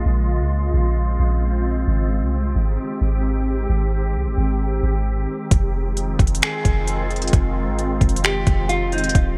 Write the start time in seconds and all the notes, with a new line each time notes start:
Already playing: C#3 G#3 F4
0.06 A#1 C4
0.40 C#2
0.74 A#1
1.19 A#1
1.88 G#1 D#3 G4
2.22 C2
2.56 G#1
3.01 G#1
3.69 G#1
4.15 C2
4.26 G#1
4.38 G#1
4.83 G#1
5.51 F1 D#3 G#3 C4 F4, kick, closed hi-hat
5.97 closed hi-hat
6.19 F1, kick, closed hi-hat
6.27 closed hi-hat
6.35 closed hi-hat
6.42 G#4, finger snap, closed hi-hat
6.65 F1, kick, closed hi-hat
6.87 closed hi-hat
7.11 closed hi-hat
7.16 closed hi-hat
7.22 closed hi-hat
7.28 closed hi-hat
7.33 F1, kick, closed hi-hat
7.67 G#1
7.79 closed hi-hat
8.01 F1, kick, closed hi-hat
8.09 closed hi-hat
8.16 closed hi-hat
8.24 G4, finger snap, closed hi-hat
8.47 F1, kick, closed hi-hat
8.69 F4, closed hi-hat
8.92 D#4, closed hi-hat
8.98 closed hi-hat
9.04 closed hi-hat
9.09 closed hi-hat
9.15 D#1, kick, closed hi-hat